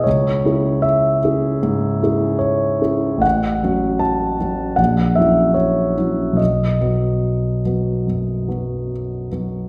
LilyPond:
\new Staff \with { instrumentName = "Grand piano" } { \time 4/4 \key b \mixolydian \tempo 4 = 75 << { cis''4 e''4. r8 cis''4 | fis''4 a''4 fis''8 e''8 cis''4 | dis''2. r4 | } \\ { cis,8 <cis' e' gis'>4 <cis' e' gis'>8 gis,8 <cis' e' gis'>4 <cis' e' gis'>8 | a,,8 <fis cis' fis'>4 <fis cis' fis'>8 ais,,8 <fis cis' e'>4 <fis cis' e'>8 | b,,8 <fis b fis'>4 <fis b fis'>8 fis,8 <fis b fis'>4 <fis b fis'>8 | } >> }